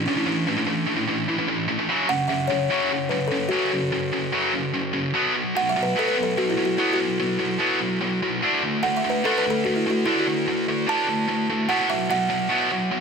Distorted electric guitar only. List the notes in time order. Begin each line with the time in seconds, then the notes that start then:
0.08 A2 E3
0.17 A2 E3
0.26 A2 E3
0.47 A2 E3
0.57 A2 E3
0.66 A2 E3
0.87 A2 E3
0.97 A2 E3
1.09 A2 E3
1.29 A2 E3
1.39 A2 E3
1.48 A2 E3
1.68 A2 E3
1.79 A2 E3
1.89 F#2 C#3 F#3
2.10 F#2 C#3
2.30 F#2 C#3
2.51 F#2 C#3
2.70 F#2 C#3 F#3
2.92 F#2 C#3
3.11 F#2 C#3
3.31 F#2 C#3
3.51 F#2 C#3 F#3
3.72 F#2 C#3
3.92 F#2 C#3
4.13 F#2 C#3
4.32 F#2 C#3 F#3
4.53 F#2 C#3
4.74 F#2 C#3
4.93 F#2 C#3
5.14 B2 F#3 B3
5.34 B2 F#3
5.56 B2 F#3
5.76 B2 F#3
5.96 B2 F#3 B3
6.17 B2 F#3
6.37 B2 F#3
6.58 B2 F#3
6.78 B2 F#3 B3
6.99 B2 F#3
7.20 B2 F#3
7.40 B2 F#3
7.60 B2 F#3 B3
7.80 B2 F#3
8.01 B2 F#3
8.23 B2 F#3
8.43 D3 A3 D4
8.63 D3 A3
8.83 D3 A3
9.05 D3 A3
9.24 D3 A3 D4
9.46 D3 A3
9.66 D3 A3
9.86 D3 A3
10.06 D3 A3 D4
10.27 D3 A3
10.48 D3 A3
10.69 D3 A3
10.88 D3 A3 D4
11.08 D3 A3
11.29 D3 A3
11.50 D3 A3
11.69 B2 F#3 B3
11.90 B2 F#3
12.10 B2 F#3
12.30 B2 F#3
12.49 B2 F#3 B3
12.70 B2 F#3
12.91 B2 F#3